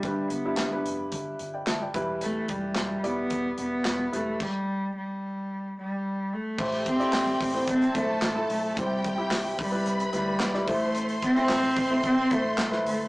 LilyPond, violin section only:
\new Staff \with { instrumentName = "Violin section" } { \time 4/4 \key a \minor \tempo 4 = 110 r1 | r1 | r1 | <g' g''>2 <a' a''>2 |
<g' g''>4. <b' b''>2 <c'' c'''>8~ | <c'' c'''>1 | }